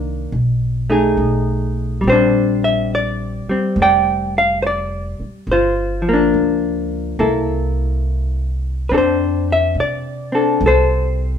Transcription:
Already playing: C2 D#3 A#3 D4
0.32 B1
0.90 A3 D#4 G#4
1.17 B1
2.01 A#1 G3
2.07 C4 G4 C5
2.12 D4
2.64 E5
2.95 D5
3.47 G3 C4, muted upright bass stroke
3.76 F1
3.82 D5 G5
4.38 F5
4.62 C5
4.67 D5
5.20 muted upright bass stroke
5.47 G1
5.52 F4 C5
6.02 F3
6.09 A#3
6.13 D4
6.34 C#2
7.19 C2 A#3 E4 A4
8.89 F2 C4 D4 B4
8.94 A4 C5
9.52 E5
9.75 C3
9.80 D5
10.32 C4 D4 A4
10.61 C2
10.66 A4 C5

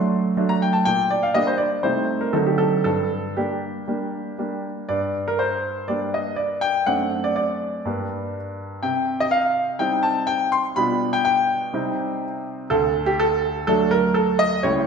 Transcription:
Already playing: F#3 A3 D4 C6
0.37 F#3 A3 D4
0.49 A#5
0.62 G5
0.73 A5
0.85 A#2 G5
1.11 D5
1.23 F5
1.34 G3 A#3 D4 D#5
1.47 C5
1.58 D5
1.83 C3 G3 A3 D#4 C5
2.21 A#4
2.33 D3 F#3 C4 D#4 A4
2.46 G4
2.58 A4
2.84 G2 A4
3.37 G3 A#3 D4 G4
3.87 G3 A#3 D4
4.38 G3 A#3 D4
4.89 G2 D5
5.28 A#4
5.39 C5
5.88 G3 A#3 D4 D5
6.14 D#5
6.36 D5
6.61 G5
6.86 F#2 A3 C4 D4 F#5
7.24 D5
7.36 D5
7.85 G2 G3 A#3 D4
8.83 C3 G5
9.20 D#5
9.31 F5
9.79 G3 C4 D#4 G5
10.03 A5
10.27 G5
10.52 C6
10.76 B2 G3 D4 F4 B5
11.13 G5
11.25 G5
11.73 C3 G3 C4 D#4
12.70 D2 A4
13.06 G4
13.20 A4
13.67 F#3 A3 D4 A4
13.91 A#4
14.14 A4
14.39 D#5
14.63 C#2 G3 A3 E4 C#5

